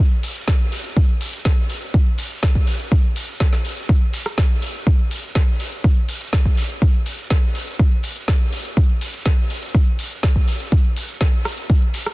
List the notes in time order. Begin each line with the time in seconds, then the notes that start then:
0.11 closed hi-hat
0.23 open hi-hat, shekere
0.36 closed hi-hat, shekere
0.48 kick, snare, closed hi-hat
0.60 closed hi-hat
0.72 open hi-hat, shekere
0.84 closed hi-hat, shekere
0.97 kick, closed hi-hat
1.09 closed hi-hat
1.21 open hi-hat, shekere
1.33 closed hi-hat, shekere
1.45 kick, snare, closed hi-hat
1.58 closed hi-hat
1.70 open hi-hat, shekere
1.82 closed hi-hat, shekere
1.94 kick, closed hi-hat
2.06 closed hi-hat
2.18 open hi-hat, shekere
2.31 closed hi-hat, shekere
2.43 kick, snare, closed hi-hat
2.55 kick, closed hi-hat
2.67 open hi-hat, shekere
2.80 closed hi-hat, shekere
2.92 kick, closed hi-hat
3.04 closed hi-hat
3.16 open hi-hat, shekere
3.28 closed hi-hat, shekere
3.40 kick, snare, closed hi-hat
3.53 snare, closed hi-hat
3.65 open hi-hat, shekere
3.77 closed hi-hat, shekere
3.89 kick, closed hi-hat
4.02 closed hi-hat
4.13 open hi-hat, shekere
4.26 cross-stick, closed hi-hat, shekere
4.38 kick, snare, closed hi-hat
4.50 closed hi-hat
4.62 open hi-hat, shekere
4.75 closed hi-hat, shekere
4.87 kick, closed hi-hat
4.99 closed hi-hat
5.11 open hi-hat, shekere
5.23 closed hi-hat, shekere
5.35 kick, snare, closed hi-hat
5.48 closed hi-hat
5.60 open hi-hat, shekere
5.72 closed hi-hat, shekere
5.84 kick, closed hi-hat, shekere
5.97 closed hi-hat
6.09 open hi-hat, shekere
6.21 closed hi-hat, shekere
6.33 kick, snare, closed hi-hat
6.45 kick, closed hi-hat
6.57 open hi-hat, shekere
6.69 closed hi-hat, shekere
6.82 kick, closed hi-hat, shekere
6.94 closed hi-hat
7.06 open hi-hat, shekere
7.19 closed hi-hat, shekere
7.30 kick, snare, closed hi-hat
7.43 closed hi-hat
7.55 open hi-hat, shekere
7.67 closed hi-hat, shekere
7.79 kick, closed hi-hat
7.92 closed hi-hat
8.03 open hi-hat, shekere
8.16 closed hi-hat, shekere
8.28 kick, snare, closed hi-hat
8.41 closed hi-hat
8.53 open hi-hat, shekere
8.65 closed hi-hat, shekere
8.76 kick, closed hi-hat, shekere
8.89 closed hi-hat
9.01 open hi-hat, shekere
9.14 closed hi-hat, shekere
9.26 kick, snare, closed hi-hat
9.38 closed hi-hat
9.50 open hi-hat, shekere
9.62 closed hi-hat, shekere
9.75 kick, closed hi-hat
9.87 closed hi-hat
9.99 open hi-hat, shekere
10.11 closed hi-hat, shekere
10.23 kick, snare, closed hi-hat
10.36 kick, closed hi-hat
10.48 open hi-hat, shekere
10.60 closed hi-hat, shekere
10.72 kick, closed hi-hat
10.85 closed hi-hat
10.96 open hi-hat, shekere
11.08 closed hi-hat, shekere
11.21 kick, snare, closed hi-hat
11.33 closed hi-hat
11.45 cross-stick, open hi-hat, shekere
11.57 closed hi-hat, shekere
11.70 kick, closed hi-hat
11.82 closed hi-hat
11.94 open hi-hat, shekere
12.06 cross-stick, closed hi-hat, shekere